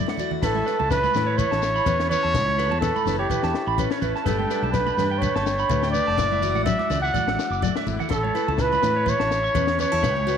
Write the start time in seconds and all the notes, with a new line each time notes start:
Already playing: F#3 A3 E4
0.07 F#5, snare, high conga
0.17 F#4 D5, low conga, shekere
0.31 low conga
0.41 A1 A2 E4 A4 B4 C#5 A5 B5, kick, snare, crash, shekere
0.55 E5, high conga
0.66 E4 B4, snare, shekere
0.79 C#2 A5, high conga
0.91 E3 B4, kick, snare, shekere
1.03 B5, snare, high conga, shekere
1.14 A2 E4 B4, snare, low conga, shekere
1.26 C#5
1.38 A2 B4 C#5, kick, low conga, shekere
1.51 A1 A5, snare
1.62 snare, shekere
1.76 B5, shekere
1.86 E2 E3 C#4 B4, kick, shekere
2.00 C#5, snare, shekere
2.10 E4 B4 C#5, low conga, shekere
2.23 E2 A5
2.34 C#2 A2 E4, muted clean electric guitar stroke, kick, snare, shekere
2.46 C#5, high conga
2.58 A4 B4, snare, shekere
2.71 E2 A5, high conga
2.81 E3 A4 B4, kick, snare, shekere
2.96 B5, high conga, shekere
3.05 F#1 E4 B4, snare, low conga, shekere
3.19 G4 C#5
3.30 A2 B4, kick, low conga, shekere
3.43 E2 A5, snare
3.54 snare
3.67 A1 B5
3.78 E3 C#4 B4, kick, shekere
3.91 C#5, snare, shekere
4.02 A1 E4 B4, low conga, shekere
4.16 A5, snare
4.25 G1 G2 G3 A3 D4 A4 B4 G5 A5 B5, kick, snare, shekere
4.38 G5, high conga
4.50 D4 B4, snare, shekere
4.62 B1 A5, high conga
4.72 G3 B4, kick, snare, shekere
4.87 B5, high conga, shekere
4.97 G2 D4 B4, snare, low conga, shekere
5.11 G5
5.18 D3 B4 C#5, kick, low conga
5.23 shekere
5.35 G1 A5, snare
5.46 snare, shekere
5.59 B5, shekere
5.69 D2 A2 B4, kick, shekere
5.83 G5, snare, shekere
5.91 B4 D5, low conga, shekere
6.07 F1 A5
6.17 F#1 F#2 E4 D5 E5 F#5 D6, kick, snare, shekere
6.32 E5, high conga, shekere
6.42 F#4 D5, low conga, shekere
6.55 A1 F#5, high conga, shekere
6.64 F#3 D5 E5, kick, snare, shekere
6.79 D6, snare, high conga
6.90 C#2 E4 D5, snare, low conga, shekere
7.02 E5 F#5, shekere
7.14 F#2 D5, kick, snare, high conga, low conga, shekere
7.27 A1 F#5, snare, high conga
7.39 snare, shekere
7.50 F#1 D6, shekere
7.62 F#3 A3 D5, kick, shekere
7.76 E5, snare, high conga, shekere
7.86 G#1 E4, low conga, shekere
8.00 F#5, low conga, shekere
8.09 A1 A4 C#5 A5 B5, muted steel-string acoustic guitar stroke, kick, snare, shekere
8.13 A4
8.23 C#5, high conga
8.35 E4 B4, snare, shekere
8.48 C#2 A5, high conga
8.58 B4, kick, snare, shekere
8.71 B5, snare, high conga, shekere
8.82 A2 E4 B4, snare, low conga, shekere
8.96 C#5
9.06 A2 B4 C#5, kick, low conga, shekere
9.20 A1 A5, snare
9.31 snare, shekere
9.44 C#6, shekere
9.55 E2 E3 C#4 B4, kick, shekere
9.67 C#5, snare
9.79 C#4 B4 C#5, low conga, shekere
9.92 E2 E4 A5
10.03 C#2 A2 E4 B4 G5, kick, snare, shekere
10.16 C#5, high conga
10.27 F#4 B4, shekere